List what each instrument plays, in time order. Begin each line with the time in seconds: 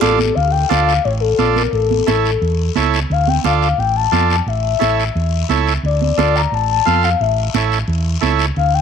Already playing: clarinet D5
0.01 fingered electric bass A1, transistor combo organ F4 A4 D5, soft synth lead A4, cowbell, high conga, short guiro
0.19 high conga, short guiro
0.35 fingered electric bass D2, soft synth lead F5, high conga, long guiro
0.51 soft synth lead G5
0.69 fingered electric bass D2, transistor combo organ F4 A4 D5, soft synth lead F5, high conga, short guiro
0.86 soft synth lead F5, short guiro
1.04 fingered electric bass A1, soft synth lead C#5, high conga, long guiro
1.20 soft synth lead A4
1.38 fingered electric bass A#1, transistor combo organ F4 A4 D5, high conga, short guiro
1.56 soft synth lead A#4, high conga, short guiro
1.73 fingered electric bass A1, soft synth lead A4, high conga, long guiro
1.91 high conga
2.07 fingered electric bass A1, transistor combo organ E4 A4 C#5, high conga, short guiro
2.25 short guiro
2.42 fingered electric bass E2, high conga, long guiro
2.75 fingered electric bass C#2, transistor combo organ E4 A4 C#5, high conga, short guiro
2.94 short guiro
3.10 fingered electric bass D2, soft synth lead F5, high conga, long guiro
3.28 soft synth lead G5, high conga
3.44 fingered electric bass D2, transistor combo organ F4 A4 D5, soft synth lead F5, high conga, short guiro
3.60 soft synth lead F5, short guiro
3.78 fingered electric bass A1, soft synth lead G5, high conga, long guiro
3.96 soft synth lead A5
4.12 fingered electric bass F2, transistor combo organ F4 A4 D5, high conga, short guiro
4.30 soft synth lead A5, short guiro
4.46 fingered electric bass A1, soft synth lead E5, high conga, long guiro
4.79 fingered electric bass A1, transistor combo organ E4 A4 C#5, high conga, short guiro
5.00 short guiro
5.15 fingered electric bass E2, high conga, long guiro
5.49 fingered electric bass C#2, transistor combo organ E4 A4 C#5, high conga, short guiro
5.67 short guiro
5.83 fingered electric bass D2, soft synth lead D5, high conga, long guiro
6.02 soft synth lead D5, high conga
6.17 fingered electric bass D2, transistor combo organ F4 A4 D5, high conga, short guiro
6.36 soft synth lead A#5, short guiro
6.52 fingered electric bass A1, soft synth lead A5, high conga, long guiro
6.71 soft synth lead A5
6.85 fingered electric bass F2, transistor combo organ F4 A4 F5, high conga, short guiro
7.03 soft synth lead F5, short guiro
7.20 fingered electric bass A1, soft synth lead E5, high conga, long guiro
7.54 fingered electric bass A1, transistor combo organ E4 A4 C#5, high conga, short guiro
7.72 short guiro
7.88 fingered electric bass E2, high conga, long guiro
8.21 fingered electric bass C#2, transistor combo organ E4 A4 C#5, high conga, short guiro
8.39 short guiro
8.56 fingered electric bass D2, soft synth lead F5, high conga, long guiro
8.74 soft synth lead G5